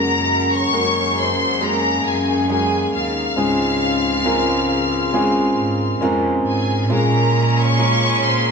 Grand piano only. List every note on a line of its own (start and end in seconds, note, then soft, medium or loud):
0.00 1.13 C#3 medium
0.00 0.68 G#3 medium
0.00 0.68 A#3 medium
0.00 0.68 C#4 medium
0.00 0.69 F#4 medium
0.00 0.69 G#4 medium
0.72 1.56 G#3 medium
0.72 1.56 A#3 medium
0.72 1.57 C#4 medium
0.72 1.57 F#4 medium
0.72 1.57 A#4 medium
1.60 2.44 G#3 medium
1.60 2.44 A#3 medium
1.60 2.45 C#4 medium
1.60 2.45 F#4 medium
1.60 2.45 G#4 medium
2.48 3.32 G#3 medium
2.48 3.33 A#3 medium
2.48 3.33 C#4 medium
2.48 3.33 F#4 medium
2.48 3.33 G#4 medium
3.36 4.65 G#2 medium
3.36 4.20 G#3 medium
3.36 4.21 C4 medium
3.36 4.21 C#4 medium
3.36 4.21 F4 medium
3.36 4.21 G#4 medium
4.25 5.09 G#3 medium
4.25 5.09 C4 medium
4.25 5.09 C#4 medium
4.25 5.09 F4 medium
4.25 5.10 A#4 loud
5.13 5.97 G#3 medium
5.13 5.97 C4 medium
5.13 5.98 C#4 medium
5.13 5.98 F4 medium
5.13 5.98 G#4 loud
6.01 6.85 G#3 medium
6.01 6.86 C4 medium
6.01 6.86 C#4 medium
6.01 6.86 F4 medium
6.01 6.86 A#4 loud
6.89 7.73 G#3 medium
6.89 7.74 A#3 medium
6.89 7.74 C#4 medium
6.89 7.74 F4 medium
6.89 7.74 G#4 medium
7.78 8.51 G#3 medium
7.78 8.51 A#3 medium
7.78 8.51 C#4 medium
7.78 8.51 F4 medium
7.78 8.51 A#4 medium